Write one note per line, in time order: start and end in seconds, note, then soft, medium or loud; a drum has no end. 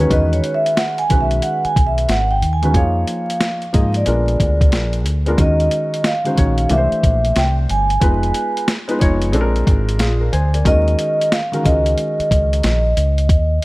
0.00 0.09 F#4 medium
0.00 0.12 B4 medium
0.00 0.10 C#5 medium
0.10 0.40 E2 medium
0.10 0.98 D#3 medium
0.10 0.98 G#3 medium
0.10 0.99 C#4 medium
0.10 0.99 F#4 medium
0.10 0.99 B4 medium
0.10 0.34 D#5 medium
0.10 kick loud
0.10 closed hi-hat medium
0.33 0.56 C#5 medium
0.33 closed hi-hat soft
0.44 closed hi-hat medium
0.54 0.77 E5 loud
0.66 closed hi-hat medium
0.77 0.99 F#5 medium
0.77 snare medium
0.77 closed hi-hat medium
0.98 1.21 G#5 loud
0.98 closed hi-hat soft
1.09 1.39 B1 medium
1.09 2.24 D#3 medium
1.09 2.25 G#3 medium
1.09 2.25 C#4 medium
1.09 2.25 F#4 medium
1.09 2.26 B4 medium
1.09 kick medium
1.09 closed hi-hat medium
1.21 1.43 E5 medium
1.31 closed hi-hat soft
1.42 1.63 F#5 loud
1.42 closed hi-hat medium
1.65 1.87 G#5 medium
1.65 muted fingered electric bass stroke soft
1.65 closed hi-hat soft
1.76 2.05 B1 medium
1.76 kick medium
1.76 closed hi-hat medium
1.87 2.09 E5 medium
1.98 closed hi-hat soft
2.08 2.43 G#1 medium
2.08 2.31 F#5 medium
2.08 snare loud
2.08 closed hi-hat medium
2.31 2.53 G5 medium
2.41 2.74 D#2 medium
2.41 closed hi-hat medium
2.53 2.75 G#5 medium
2.62 2.72 D#3 medium
2.62 2.73 G#3 medium
2.62 2.73 C#4 medium
2.62 2.73 F#4 medium
2.62 2.74 B4 medium
2.62 closed hi-hat soft
2.74 3.03 F2 loud
2.74 3.62 F3 medium
2.74 3.62 A#3 medium
2.74 3.63 D#4 medium
2.74 3.63 G#4 medium
2.74 3.63 C#5 medium
2.74 3.91 F5 medium
2.74 kick medium
2.74 closed hi-hat medium
3.08 closed hi-hat medium
3.30 closed hi-hat medium
3.41 snare medium
3.41 closed hi-hat medium
3.62 closed hi-hat soft
3.73 4.03 G#2 medium
3.73 4.06 F3 medium
3.73 4.06 A#3 medium
3.73 4.07 D#4 medium
3.73 4.07 G#4 medium
3.73 4.07 D#5 medium
3.73 kick medium
3.73 closed hi-hat medium
3.94 4.91 D5 medium
3.94 closed hi-hat soft
4.05 4.36 A#1 medium
4.05 5.04 G#3 medium
4.05 5.04 B3 medium
4.05 5.04 D4 medium
4.05 5.05 F4 medium
4.05 5.05 A#4 medium
4.05 closed hi-hat medium
4.28 closed hi-hat soft
4.40 4.73 D2 medium
4.40 kick medium
4.40 closed hi-hat medium
4.61 kick medium
4.61 closed hi-hat soft
4.72 5.06 A#1 medium
4.72 snare loud
4.72 closed hi-hat medium
4.93 closed hi-hat soft
5.06 5.34 D2 medium
5.06 closed hi-hat medium
5.26 5.36 G#3 medium
5.26 5.36 B3 medium
5.26 5.37 D4 medium
5.26 5.37 F4 medium
5.26 5.37 A#4 medium
5.26 closed hi-hat soft
5.37 5.67 D#2 loud
5.37 6.08 D#3 medium
5.37 6.09 G#3 medium
5.37 6.09 C#4 medium
5.37 6.09 F#4 medium
5.37 6.09 A#4 medium
5.37 6.07 D#5 medium
5.37 kick loud
5.37 closed hi-hat medium
5.60 closed hi-hat soft
5.71 closed hi-hat medium
5.94 closed hi-hat medium
6.04 6.73 F5 medium
6.04 snare loud
6.04 closed hi-hat medium
6.24 6.34 D#3 medium
6.24 6.35 G#3 medium
6.24 6.35 C#4 medium
6.24 6.36 F#4 medium
6.24 6.36 C5 medium
6.24 closed hi-hat soft
6.36 6.67 A#1 medium
6.36 6.70 D#3 medium
6.36 6.70 G#3 medium
6.36 6.70 C#4 medium
6.36 6.70 F#4 medium
6.36 6.71 C#5 medium
6.36 kick medium
6.36 closed hi-hat medium
6.58 closed hi-hat soft
6.69 6.89 C2 medium
6.69 7.84 E3 medium
6.69 7.85 A3 medium
6.69 7.85 D4 medium
6.69 7.85 G4 medium
6.69 6.79 A#4 medium
6.69 7.39 E5 medium
6.69 closed hi-hat medium
6.77 7.89 C5 medium
6.92 closed hi-hat soft
7.03 7.32 A#1 loud
7.03 kick medium
7.03 closed hi-hat medium
7.25 closed hi-hat soft
7.36 7.65 C2 loud
7.36 7.52 G5 loud
7.36 snare loud
7.36 closed hi-hat medium
7.69 7.98 G1 medium
7.69 8.65 G#5 medium
7.69 closed hi-hat medium
7.90 closed hi-hat soft
8.00 8.31 F1 medium
8.00 8.72 G#3 medium
8.00 8.72 B3 medium
8.00 8.72 D#4 medium
8.00 8.73 F4 medium
8.00 8.73 B4 medium
8.00 kick loud
8.00 closed hi-hat medium
8.23 closed hi-hat soft
8.34 closed hi-hat medium
8.57 closed hi-hat medium
8.68 snare loud
8.68 closed hi-hat medium
8.88 8.98 G#3 medium
8.88 8.98 B3 medium
8.88 8.99 D#4 medium
8.88 8.99 F4 medium
8.88 8.99 B4 medium
8.88 closed hi-hat soft
8.99 9.34 F1 medium
8.99 9.31 G#3 medium
8.99 9.33 B3 medium
8.99 9.34 D#4 medium
8.99 9.32 F4 medium
8.99 9.34 C#5 loud
8.99 kick medium
8.99 closed hi-hat medium
9.22 closed hi-hat soft
9.32 9.63 A#1 loud
9.32 10.48 G#3 medium
9.32 10.48 C4 medium
9.32 10.48 D4 medium
9.32 9.98 F4 medium
9.32 9.43 A4 medium
9.32 closed hi-hat medium
9.41 10.03 A#4 loud
9.56 closed hi-hat soft
9.67 10.00 G#1 medium
9.67 kick medium
9.67 closed hi-hat medium
9.89 closed hi-hat soft
9.99 10.29 A#1 medium
9.99 10.20 F4 medium
9.99 10.20 G#4 medium
9.99 10.30 F5 medium
9.99 snare loud
9.99 closed hi-hat medium
10.21 10.32 A#4 medium
10.33 10.62 D2 medium
10.33 10.53 G#4 medium
10.33 10.53 C5 medium
10.33 10.63 G#5 medium
10.33 closed hi-hat medium
10.54 10.65 A#4 medium
10.54 10.85 D5 medium
10.54 closed hi-hat soft
10.65 10.94 D#2 loud
10.65 11.36 D#3 medium
10.65 11.36 G#3 medium
10.65 11.36 C#4 medium
10.65 11.37 F#4 medium
10.65 11.37 A#4 medium
10.65 11.28 D#5 loud
10.65 kick loud
10.65 closed hi-hat medium
10.88 closed hi-hat soft
10.99 closed hi-hat medium
11.21 closed hi-hat soft
11.32 11.66 F5 loud
11.32 snare medium
11.32 closed hi-hat medium
11.52 11.62 D#3 medium
11.52 11.62 G#3 medium
11.52 11.63 C#4 medium
11.52 11.63 F#4 medium
11.52 11.63 A#4 medium
11.52 closed hi-hat soft
11.63 11.94 C#2 medium
11.63 12.79 D#3 medium
11.63 12.79 G#3 medium
11.63 12.80 C#4 medium
11.63 11.74 F4 soft
11.63 12.80 A#4 medium
11.63 13.65 D#5 medium
11.63 kick medium
11.63 closed hi-hat medium
11.72 12.83 F#4 medium
11.86 closed hi-hat soft
11.98 closed hi-hat medium
12.19 muted fingered electric bass stroke soft
12.19 closed hi-hat soft
12.31 12.60 C#2 medium
12.31 kick medium
12.31 closed hi-hat medium
12.53 closed hi-hat soft
12.63 12.92 A#1 medium
12.63 snare loud
12.63 closed hi-hat medium
12.97 13.29 C#2 loud
12.97 closed hi-hat medium
13.18 closed hi-hat soft
13.29 13.58 D#2 loud
13.29 kick loud
13.29 closed hi-hat medium